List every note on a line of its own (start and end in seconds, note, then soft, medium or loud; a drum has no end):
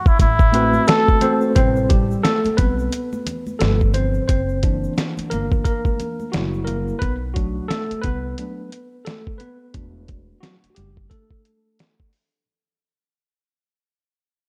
0.06 0.20 E4 medium
0.06 kick medium
0.06 shaker soft
0.19 0.76 A1 loud
0.19 0.85 E4 medium
0.19 kick medium
0.19 closed hi-hat medium
0.19 high conga soft
0.19 shaker medium
0.39 kick medium
0.39 shaker soft
0.52 0.88 A3 medium
0.52 1.21 C4 medium
0.52 1.22 F#4 medium
0.52 1.51 B4 medium
0.52 closed hi-hat medium
0.52 shaker soft
0.73 high conga medium
0.73 shaker soft
0.87 1.20 A3 medium
0.87 1.22 A4 loud
0.87 1.39 A4 loud
0.87 snare loud
0.87 closed hi-hat medium
0.87 shaker medium
1.08 kick medium
1.08 shaker soft
1.21 1.56 A3 medium
1.21 1.54 C4 medium
1.21 1.57 F#4 medium
1.21 1.57 A4 medium
1.21 1.54 C5 medium
1.21 closed hi-hat medium
1.21 low conga medium
1.21 shaker soft
1.41 shaker soft
1.55 2.13 A1 loud
1.55 2.04 C3 soft
1.55 1.90 G3 medium
1.55 1.88 C4 medium
1.55 2.04 B4 medium
1.55 1.91 C5 medium
1.55 kick medium
1.55 closed hi-hat medium
1.55 shaker medium
1.76 shaker soft
1.89 2.23 G3 medium
1.89 2.22 G4 medium
1.89 kick medium
1.89 closed hi-hat medium
1.89 shaker soft
2.11 shaker soft
2.23 2.56 A3 medium
2.23 2.56 A4 loud
2.23 snare loud
2.23 closed hi-hat medium
2.23 shaker medium
2.44 muted upright bass stroke soft
2.44 closed hi-hat soft
2.44 high conga medium
2.44 shaker soft
2.57 2.87 B1 medium
2.57 2.89 G3 medium
2.57 3.57 B3 medium
2.57 2.89 C4 soft
2.57 3.60 B4 loud
2.57 kick medium
2.57 closed hi-hat medium
2.57 high conga soft
2.57 low conga medium
2.57 shaker soft
2.79 shaker soft
2.92 closed hi-hat medium
2.92 shaker medium
3.13 high conga medium
3.13 shaker soft
3.26 closed hi-hat medium
3.26 low conga medium
3.26 shaker soft
3.47 high conga medium
3.47 shaker soft
3.59 4.18 G1 loud
3.59 4.25 F3 medium
3.59 3.93 A3 medium
3.59 3.92 A4 medium
3.59 4.26 B4 medium
3.59 snare loud
3.59 closed hi-hat medium
3.59 shaker medium
3.80 kick medium
3.80 shaker soft
3.94 4.27 C4 medium
3.94 4.26 C5 medium
3.94 closed hi-hat medium
3.94 low conga medium
3.94 shaker soft
4.14 shaker soft
4.28 4.86 F#1 medium
4.28 4.94 C4 medium
4.28 4.92 C5 medium
4.28 kick medium
4.28 closed hi-hat medium
4.28 shaker medium
4.49 shaker soft
4.62 6.30 E3 medium
4.62 5.32 A#3 soft
4.62 6.30 D4 medium
4.62 kick medium
4.62 closed hi-hat medium
4.62 shaker soft
4.84 shaker soft
4.97 snare medium
4.97 closed hi-hat medium
4.97 shaker medium
5.17 muted upright bass stroke soft
5.17 closed hi-hat medium
5.17 high conga soft
5.17 shaker soft
5.30 5.60 G1 medium
5.30 5.64 A#3 medium
5.30 5.63 A#4 medium
5.30 closed hi-hat medium
5.30 high conga soft
5.30 low conga medium
5.30 shaker soft
5.51 kick medium
5.51 shaker soft
5.64 6.30 A#3 medium
5.64 6.29 A#4 loud
5.64 kick medium
5.64 closed hi-hat medium
5.64 shaker medium
5.85 kick medium
5.85 high conga medium
5.85 shaker soft
6.00 closed hi-hat medium
6.00 low conga medium
6.00 shaker soft
6.20 high conga medium
6.20 shaker soft
6.32 6.90 F#1 medium
6.32 6.66 F#3 medium
6.32 6.98 G3 soft
6.32 6.66 A#3 soft
6.32 6.99 E4 medium
6.32 6.68 F#4 medium
6.32 snare loud
6.32 closed hi-hat medium
6.32 shaker medium
6.54 shaker soft
6.65 6.99 A#3 medium
6.65 7.01 A#4 medium
6.65 closed hi-hat medium
6.65 low conga medium
6.65 shaker soft
6.88 shaker soft
6.99 7.59 B1 loud
6.99 7.17 B3 medium
6.99 7.15 B4 loud
6.99 kick medium
6.99 closed hi-hat medium
7.34 7.68 F#3 medium
7.34 7.70 A3 soft
7.34 7.84 D4 medium
7.34 7.70 F#4 medium
7.34 kick medium
7.34 closed hi-hat medium
7.68 8.02 A3 medium
7.68 8.04 A4 loud
7.68 snare loud
7.68 closed hi-hat medium
7.91 muted upright bass stroke soft
7.91 closed hi-hat soft
8.02 8.33 C2 medium
8.02 9.03 B3 medium
8.02 9.08 B4 loud
8.02 kick medium
8.02 closed hi-hat medium
8.38 8.69 F#3 soft
8.38 8.69 A3 soft
8.38 8.69 D4 medium
8.38 closed hi-hat medium
8.72 closed hi-hat medium
9.05 9.39 A3 medium
9.05 9.41 A4 medium
9.05 snare loud
9.05 closed hi-hat medium
9.27 kick medium
9.38 10.39 B3 medium
9.38 10.37 B4 medium
9.38 closed hi-hat medium
9.74 10.31 E1 medium
9.74 11.11 A3 soft
9.74 12.44 D4 medium
9.74 10.39 F#4 soft
9.74 kick medium
9.74 closed hi-hat medium
10.08 kick medium
10.08 closed hi-hat medium
10.41 10.56 F#3 medium
10.41 10.54 F#4 medium
10.41 snare medium
10.41 closed hi-hat medium
10.64 muted upright bass stroke soft
10.64 closed hi-hat soft
10.70 10.76 F#4 medium
10.75 11.06 F#1 medium
10.75 11.09 G3 medium
10.75 11.07 G4 medium
10.75 closed hi-hat medium
10.97 kick medium
11.10 12.10 A3 medium
11.10 12.09 A4 medium
11.10 kick medium
11.10 closed hi-hat medium
11.31 kick medium
11.45 closed hi-hat medium
11.79 snare loud
11.79 closed hi-hat medium
12.00 kick medium
12.13 open hi-hat soft